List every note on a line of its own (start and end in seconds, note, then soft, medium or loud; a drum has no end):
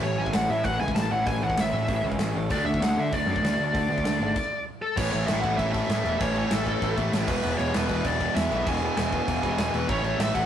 0.00 0.16 A1 loud
0.00 0.48 A2 medium
0.00 0.17 A2 medium
0.00 0.49 E3 loud
0.00 0.18 E3 medium
0.00 0.49 A3 medium
0.00 0.48 C#4 medium
0.00 0.47 E4 loud
0.00 0.20 C#5 medium
0.18 0.32 A1 medium
0.18 0.33 A2 medium
0.18 0.33 E3 medium
0.18 0.34 G#5 medium
0.26 kick medium
0.33 0.47 A1 medium
0.33 0.48 A2 medium
0.33 0.48 E3 medium
0.33 0.50 F#5 medium
0.33 snare loud
0.33 open hi-hat medium
0.48 0.62 A2 medium
0.48 0.63 A2 medium
0.48 1.09 A2 medium
0.48 0.64 E3 medium
0.48 1.09 E3 medium
0.48 1.11 A3 medium
0.48 1.10 C#4 medium
0.48 1.10 E4 medium
0.48 0.64 E5 medium
0.64 0.78 A1 medium
0.64 0.79 A2 medium
0.64 0.79 E3 medium
0.64 0.80 F#5 loud
0.64 kick loud
0.64 open hi-hat medium
0.80 0.94 C#2 medium
0.80 0.94 A2 medium
0.80 0.95 E3 medium
0.80 0.95 G#5 medium
0.88 kick medium
0.95 1.09 A1 medium
0.95 1.10 A2 medium
0.95 1.10 E3 medium
0.95 1.11 A5 loud
0.95 snare loud
0.95 open hi-hat medium
1.10 1.24 A1 loud
1.10 1.72 A2 loud
1.10 1.24 A2 medium
1.10 1.72 E3 loud
1.10 1.25 E3 medium
1.10 1.74 A3 loud
1.10 1.73 C#4 medium
1.10 1.72 E4 loud
1.10 1.27 F#5 loud
1.26 1.40 A1 loud
1.26 1.41 A2 medium
1.26 1.41 E3 medium
1.26 1.43 G#5 loud
1.26 kick loud
1.26 open hi-hat medium
1.42 1.55 A1 medium
1.42 1.56 A2 medium
1.42 1.57 E3 medium
1.42 1.59 F#5 medium
1.50 kick medium
1.57 1.71 A1 medium
1.57 1.72 A2 medium
1.57 1.72 E3 medium
1.57 2.03 E5 medium
1.57 snare loud
1.57 open hi-hat medium
1.73 1.86 A2 medium
1.73 1.87 A2 medium
1.73 2.36 A2 medium
1.73 1.88 E3 medium
1.73 2.35 E3 medium
1.73 2.50 A3 loud
1.73 2.35 C#4 medium
1.73 2.34 E4 loud
1.88 2.02 A1 medium
1.88 2.03 A2 medium
1.88 2.04 E3 medium
1.88 kick loud
1.88 open hi-hat medium
2.03 2.17 C#2 loud
2.03 2.19 A2 medium
2.03 2.19 E3 medium
2.12 kick medium
2.19 2.32 A1 medium
2.19 2.34 A2 medium
2.19 2.34 E3 medium
2.19 snare loud
2.19 open hi-hat medium
2.35 2.48 A1 loud
2.35 2.50 A2 medium
2.35 2.50 E3 medium
2.49 2.63 D2 loud
2.49 3.10 D3 medium
2.49 2.66 D3 medium
2.49 3.12 A3 loud
2.49 2.66 A3 loud
2.49 3.11 D4 loud
2.49 2.66 D4 loud
2.49 3.12 F#4 loud
2.49 2.65 D5 medium
2.49 kick loud
2.49 open hi-hat medium
2.65 2.79 D2 medium
2.65 2.81 D3 medium
2.65 2.81 A3 medium
2.65 2.82 E5 loud
2.74 kick loud
2.80 2.94 D2 loud
2.80 2.96 D3 medium
2.80 2.96 A3 medium
2.80 3.00 F#5 loud
2.80 snare loud
2.80 open hi-hat medium
2.95 3.10 D3 medium
2.95 3.12 D3 medium
2.95 3.10 A3 medium
2.99 3.12 A3 medium
2.99 3.14 E5 loud
3.11 3.25 D2 medium
3.11 3.73 D3 medium
3.11 3.27 D3 medium
3.11 3.74 A3 medium
3.11 3.28 A3 loud
3.11 3.74 D4 loud
3.11 3.74 F#4 medium
3.11 4.63 D5 medium
3.11 kick loud
3.11 open hi-hat medium
3.27 3.40 F#2 medium
3.27 3.43 D3 medium
3.27 3.43 A3 medium
3.36 kick medium
3.42 3.56 D2 loud
3.42 3.59 D3 medium
3.42 3.59 A3 loud
3.42 snare loud
3.42 open hi-hat medium
3.57 3.71 D2 loud
3.57 3.72 D3 medium
3.57 3.72 A3 medium
3.62 3.75 D3 medium
3.62 3.75 A3 medium
3.74 3.87 D2 loud
3.74 4.35 D3 medium
3.74 3.90 D3 medium
3.74 4.36 A3 medium
3.74 3.90 A3 medium
3.74 4.36 D4 medium
3.74 4.36 F#4 loud
3.74 kick loud
3.74 open hi-hat medium
3.90 4.03 D2 medium
3.90 4.05 D3 medium
3.90 4.05 A3 medium
3.98 kick medium
4.05 4.18 D2 medium
4.05 4.20 D3 medium
4.05 4.21 A3 medium
4.05 snare loud
4.05 open hi-hat medium
4.20 4.33 G#1 medium
4.20 4.35 D3 medium
4.20 4.36 A3 medium
4.36 kick loud
4.36 crash loud
4.82 4.97 A4 medium
4.96 5.09 A1 loud
4.96 5.42 A2 loud
4.96 5.14 A2 medium
4.96 5.45 E3 loud
4.96 5.13 E3 loud
4.96 5.43 A3 medium
4.96 5.12 A3 loud
4.96 5.43 C#4 medium
4.96 5.43 E4 loud
4.96 5.10 C#5 loud
4.96 kick loud
4.96 crash loud
5.12 5.24 A1 medium
5.12 5.27 A2 medium
5.12 5.28 E3 medium
5.12 5.28 A3 medium
5.12 5.27 C#5 medium
5.12 crash medium
5.26 5.40 A1 loud
5.26 5.43 A2 loud
5.26 5.43 E3 medium
5.26 5.42 A3 loud
5.26 5.41 E5 loud
5.26 snare loud
5.26 crash medium
5.41 5.55 A1 medium
5.41 5.57 A2 medium
5.41 5.58 E3 loud
5.41 5.59 A3 loud
5.41 6.20 A3 medium
5.41 6.20 C#4 loud
5.41 6.22 E4 medium
5.41 5.57 F#5 loud
5.41 kick medium
5.41 crash medium
5.45 6.19 A2 medium
5.45 6.21 E3 medium
5.57 5.81 A1 medium
5.57 5.73 A2 medium
5.57 5.73 E3 loud
5.57 5.72 A3 loud
5.57 5.71 E5 loud
5.57 kick medium
5.57 crash medium
5.72 5.88 A2 medium
5.72 5.90 E3 medium
5.72 5.89 A3 loud
5.72 6.16 E5 loud
5.72 kick medium
5.72 crash medium
5.89 6.01 A2 loud
5.89 6.05 A2 medium
5.89 6.05 E3 medium
5.89 6.04 A3 loud
5.89 snare loud
5.89 crash medium
6.04 6.16 E1 medium
6.04 6.20 A2 medium
6.04 6.22 E3 medium
6.04 6.21 A3 loud
6.04 crash medium
6.20 6.43 A1 loud
6.20 6.66 A2 loud
6.20 6.36 A2 medium
6.20 6.68 E3 loud
6.20 6.36 E3 loud
6.20 6.67 A3 loud
6.20 6.35 A3 loud
6.20 6.66 C#4 loud
6.20 6.66 E4 loud
6.20 6.53 C#5 loud
6.20 kick loud
6.20 crash loud
6.36 6.51 A2 medium
6.36 6.52 E3 medium
6.36 6.52 A3 loud
6.36 crash medium
6.51 6.74 A1 loud
6.51 6.67 A2 medium
6.51 6.67 E3 medium
6.51 6.66 A3 loud
6.51 6.95 A4 medium
6.51 snare loud
6.51 crash medium
6.66 6.81 A2 medium
6.66 7.29 A2 medium
6.66 6.83 E3 medium
6.66 7.28 E3 medium
6.66 6.82 A3 loud
6.66 7.28 A3 medium
6.66 7.28 C#4 medium
6.66 7.30 E4 medium
6.66 kick medium
6.66 crash medium
6.82 6.93 A1 medium
6.82 6.98 A2 medium
6.82 6.97 E3 medium
6.82 6.96 A3 medium
6.82 kick loud
6.82 crash medium
6.97 7.09 A1 medium
6.97 7.12 A2 loud
6.97 7.13 E3 loud
6.97 7.13 A3 loud
6.97 kick medium
6.97 crash medium
7.13 7.24 A1 medium
7.13 7.28 A2 medium
7.13 7.28 E3 medium
7.13 7.28 A3 loud
7.13 snare loud
7.13 crash medium
7.28 7.39 E1 loud
7.28 7.44 E2 loud
7.28 7.42 B2 loud
7.28 7.73 E3 loud
7.28 7.43 E3 loud
7.28 7.74 G#3 medium
7.28 7.75 B3 loud
7.28 7.76 E4 loud
7.28 7.42 B4 medium
7.28 kick loud
7.28 crash loud
7.43 7.55 E1 loud
7.43 7.57 E2 medium
7.43 7.58 B2 loud
7.43 7.58 E3 loud
7.43 7.49 B4 medium
7.43 crash loud
7.58 7.70 E1 loud
7.58 7.74 E2 medium
7.58 7.72 B2 loud
7.58 7.73 E3 medium
7.58 7.73 C#5 loud
7.58 crash medium
7.73 7.86 E1 loud
7.73 7.87 E2 medium
7.73 7.88 B2 medium
7.73 7.89 E3 loud
7.73 8.52 E3 medium
7.73 8.50 G#3 medium
7.73 8.51 B3 medium
7.73 8.54 E4 medium
7.73 8.06 B4 loud
7.73 snare loud
7.73 crash loud
7.88 8.01 E1 medium
7.88 8.04 E2 loud
7.88 8.03 B2 medium
7.88 8.03 E3 loud
7.88 kick medium
7.88 crash medium
8.04 8.27 E1 loud
8.04 8.17 E2 medium
8.04 8.19 B2 medium
8.04 8.20 E3 loud
8.04 8.35 D5 loud
8.04 kick loud
8.04 crash medium
8.19 8.34 E2 loud
8.19 8.33 B2 loud
8.19 8.33 E3 loud
8.19 kick medium
8.19 crash medium
8.34 8.48 E2 medium
8.34 8.47 E2 loud
8.34 8.48 B2 medium
8.34 8.50 E3 loud
8.34 8.64 E5 loud
8.34 snare loud
8.34 crash medium
8.49 8.62 B1 medium
8.49 8.66 E2 medium
8.49 8.66 B2 medium
8.49 8.66 E3 loud
8.49 8.96 E3 loud
8.49 8.97 G#3 loud
8.49 crash medium
8.53 8.97 B3 loud
8.53 8.98 E4 loud
8.66 8.89 E1 loud
8.66 8.81 E2 medium
8.66 8.81 B2 loud
8.66 8.82 E3 loud
8.66 8.96 G#5 loud
8.66 kick loud
8.66 crash loud
8.82 8.97 E2 medium
8.82 8.97 B2 medium
8.82 8.96 E3 medium
8.82 crash medium
8.97 9.19 E1 loud
8.97 9.11 E2 medium
8.97 9.11 B2 medium
8.97 9.88 E3 medium
8.97 9.13 E3 loud
8.97 9.74 G#3 medium
8.97 9.74 B3 medium
8.97 9.90 E4 loud
8.97 9.76 G#5 loud
8.97 snare loud
8.97 crash medium
9.12 9.28 E2 medium
9.12 9.27 B2 loud
9.12 9.27 E3 loud
9.12 kick medium
9.12 crash medium
9.27 9.39 E1 medium
9.27 9.41 E2 medium
9.27 9.42 B2 medium
9.27 9.44 E3 loud
9.27 kick loud
9.27 crash medium
9.43 9.54 E1 loud
9.43 9.58 E2 loud
9.43 9.57 B2 loud
9.43 9.58 E3 loud
9.43 kick medium
9.43 crash medium
9.57 9.69 E1 loud
9.57 9.72 E2 medium
9.57 9.73 B2 medium
9.57 9.74 E3 loud
9.57 snare loud
9.57 crash medium
9.73 9.84 E1 medium
9.73 9.88 E2 medium
9.73 9.87 B2 loud
9.73 9.88 E3 loud
9.73 9.89 B4 medium
9.73 crash medium
9.88 10.00 A1 loud
9.88 10.05 A2 loud
9.88 10.34 A2 medium
9.88 10.04 E3 medium
9.88 10.34 E3 loud
9.88 10.03 A3 loud
9.88 10.33 A3 medium
9.88 10.32 C#4 loud
9.88 10.32 E4 medium
9.88 10.03 C#5 loud
9.88 kick loud
9.88 crash medium
10.03 10.15 A1 medium
10.03 10.18 A2 medium
10.03 10.20 E3 medium
10.03 10.19 A3 loud
10.03 10.20 C#5 medium
10.03 crash medium
10.18 10.30 A1 loud
10.18 10.35 A2 loud
10.18 10.35 E3 medium
10.18 10.33 A3 medium
10.18 10.36 E5 loud
10.18 snare loud
10.18 crash loud
10.32 10.46 A1 medium
10.32 10.46 A2 medium
10.32 10.46 E3 medium
10.32 10.46 A3 loud
10.32 10.46 A3 medium
10.32 10.46 C#4 medium
10.32 10.46 E4 medium
10.32 10.46 F#5 medium
10.32 kick medium
10.32 crash medium